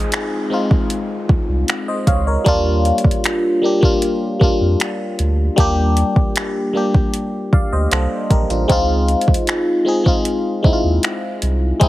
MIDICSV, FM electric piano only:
0, 0, Header, 1, 2, 480
1, 0, Start_track
1, 0, Tempo, 779221
1, 1515, Time_signature, 4, 2, 24, 8
1, 7321, End_track
2, 0, Start_track
2, 0, Title_t, "FM electric piano"
2, 0, Program_c, 0, 5
2, 0, Control_c, 0, 64, 127
2, 0, Note_on_c, 0, 56, 106
2, 0, Note_on_c, 0, 60, 101
2, 0, Note_on_c, 0, 63, 101
2, 0, Note_on_c, 0, 65, 93
2, 0, Note_on_c, 0, 68, 118
2, 121, Note_off_c, 0, 56, 0
2, 125, Note_off_c, 0, 60, 0
2, 129, Note_off_c, 0, 63, 0
2, 133, Note_off_c, 0, 68, 0
2, 308, Note_on_c, 0, 56, 87
2, 315, Note_on_c, 0, 60, 77
2, 323, Note_on_c, 0, 63, 76
2, 330, Note_off_c, 0, 65, 0
2, 330, Note_on_c, 0, 65, 92
2, 1019, Note_off_c, 0, 56, 0
2, 1022, Note_off_c, 0, 60, 0
2, 1026, Note_off_c, 0, 63, 0
2, 1030, Note_off_c, 0, 65, 0
2, 1159, Note_on_c, 0, 75, 64
2, 1163, Note_on_c, 0, 72, 58
2, 1271, Note_off_c, 0, 75, 0
2, 1273, Note_off_c, 0, 72, 0
2, 1279, Note_on_c, 0, 77, 66
2, 1282, Note_on_c, 0, 73, 58
2, 1391, Note_off_c, 0, 73, 0
2, 1391, Note_off_c, 0, 77, 0
2, 1399, Note_on_c, 0, 73, 61
2, 1403, Note_on_c, 0, 70, 54
2, 1506, Note_on_c, 0, 55, 111
2, 1514, Note_on_c, 0, 58, 106
2, 1521, Note_on_c, 0, 62, 106
2, 1524, Control_c, 0, 64, 0
2, 1529, Note_on_c, 0, 65, 126
2, 1618, Control_c, 0, 64, 127
2, 1625, Note_off_c, 0, 73, 0
2, 1627, Note_off_c, 0, 70, 0
2, 2041, Note_off_c, 0, 55, 0
2, 2045, Note_off_c, 0, 58, 0
2, 2048, Note_off_c, 0, 62, 0
2, 2052, Note_off_c, 0, 65, 0
2, 2228, Note_on_c, 0, 55, 75
2, 2236, Note_on_c, 0, 58, 72
2, 2243, Note_on_c, 0, 62, 70
2, 2251, Note_on_c, 0, 67, 81
2, 2320, Note_off_c, 0, 55, 0
2, 2324, Note_off_c, 0, 58, 0
2, 2328, Note_off_c, 0, 62, 0
2, 2332, Note_off_c, 0, 67, 0
2, 2347, Note_on_c, 0, 55, 88
2, 2355, Note_on_c, 0, 58, 80
2, 2363, Note_on_c, 0, 62, 81
2, 2371, Note_on_c, 0, 65, 100
2, 2616, Note_off_c, 0, 55, 0
2, 2620, Note_off_c, 0, 58, 0
2, 2624, Note_off_c, 0, 62, 0
2, 2628, Note_off_c, 0, 65, 0
2, 2707, Note_on_c, 0, 55, 85
2, 2715, Note_on_c, 0, 58, 76
2, 2723, Note_on_c, 0, 62, 81
2, 2731, Note_on_c, 0, 65, 94
2, 3242, Note_off_c, 0, 55, 0
2, 3246, Note_off_c, 0, 58, 0
2, 3249, Note_off_c, 0, 62, 0
2, 3253, Note_off_c, 0, 65, 0
2, 3426, Note_on_c, 0, 55, 113
2, 3435, Note_on_c, 0, 58, 105
2, 3443, Note_on_c, 0, 62, 102
2, 3449, Note_on_c, 0, 67, 119
2, 3961, Note_off_c, 0, 55, 0
2, 3965, Note_off_c, 0, 58, 0
2, 3969, Note_off_c, 0, 62, 0
2, 3973, Note_off_c, 0, 67, 0
2, 4147, Note_on_c, 0, 55, 82
2, 4155, Note_on_c, 0, 58, 78
2, 4163, Note_on_c, 0, 62, 75
2, 4171, Note_on_c, 0, 67, 90
2, 4639, Note_off_c, 0, 62, 0
2, 4639, Note_on_c, 0, 77, 61
2, 4643, Note_off_c, 0, 67, 0
2, 4643, Note_on_c, 0, 74, 49
2, 4751, Note_off_c, 0, 77, 0
2, 4754, Note_off_c, 0, 74, 0
2, 4759, Note_on_c, 0, 75, 63
2, 4762, Note_on_c, 0, 72, 54
2, 4858, Note_off_c, 0, 55, 0
2, 4862, Note_off_c, 0, 58, 0
2, 4871, Note_off_c, 0, 72, 0
2, 4871, Note_off_c, 0, 75, 0
2, 4878, Note_on_c, 0, 72, 69
2, 4882, Note_on_c, 0, 69, 55
2, 5105, Note_off_c, 0, 72, 0
2, 5107, Note_off_c, 0, 69, 0
2, 5118, Note_on_c, 0, 70, 65
2, 5122, Note_on_c, 0, 67, 52
2, 5231, Note_off_c, 0, 70, 0
2, 5233, Note_off_c, 0, 67, 0
2, 5238, Note_on_c, 0, 65, 61
2, 5242, Note_on_c, 0, 62, 52
2, 5347, Note_on_c, 0, 56, 107
2, 5354, Note_on_c, 0, 60, 100
2, 5362, Note_off_c, 0, 65, 0
2, 5362, Control_c, 0, 64, 0
2, 5362, Note_on_c, 0, 63, 107
2, 5370, Note_on_c, 0, 65, 122
2, 5467, Note_off_c, 0, 62, 0
2, 5469, Control_c, 0, 64, 127
2, 5881, Note_off_c, 0, 56, 0
2, 5885, Note_off_c, 0, 60, 0
2, 5889, Note_off_c, 0, 63, 0
2, 5893, Note_off_c, 0, 65, 0
2, 6066, Note_on_c, 0, 56, 74
2, 6073, Note_on_c, 0, 60, 69
2, 6081, Note_on_c, 0, 63, 69
2, 6088, Note_on_c, 0, 68, 87
2, 6159, Note_off_c, 0, 56, 0
2, 6163, Note_off_c, 0, 60, 0
2, 6167, Note_off_c, 0, 63, 0
2, 6170, Note_off_c, 0, 68, 0
2, 6185, Note_on_c, 0, 56, 83
2, 6192, Note_on_c, 0, 60, 77
2, 6200, Note_on_c, 0, 63, 78
2, 6208, Note_on_c, 0, 65, 95
2, 6456, Note_off_c, 0, 56, 0
2, 6459, Note_off_c, 0, 60, 0
2, 6463, Note_off_c, 0, 63, 0
2, 6467, Note_off_c, 0, 65, 0
2, 6546, Note_on_c, 0, 56, 83
2, 6554, Note_on_c, 0, 60, 78
2, 6562, Note_on_c, 0, 63, 76
2, 6569, Note_on_c, 0, 64, 78
2, 6602, Note_off_c, 0, 64, 0
2, 6609, Note_on_c, 0, 65, 91
2, 7081, Note_off_c, 0, 56, 0
2, 7085, Note_off_c, 0, 60, 0
2, 7089, Note_off_c, 0, 63, 0
2, 7113, Note_off_c, 0, 65, 0
2, 7267, Note_on_c, 0, 56, 118
2, 7274, Note_on_c, 0, 60, 102
2, 7282, Note_on_c, 0, 63, 99
2, 7289, Note_on_c, 0, 64, 96
2, 7321, Note_off_c, 0, 56, 0
2, 7321, Note_off_c, 0, 60, 0
2, 7321, Note_off_c, 0, 63, 0
2, 7321, Note_off_c, 0, 64, 0
2, 7321, End_track
0, 0, End_of_file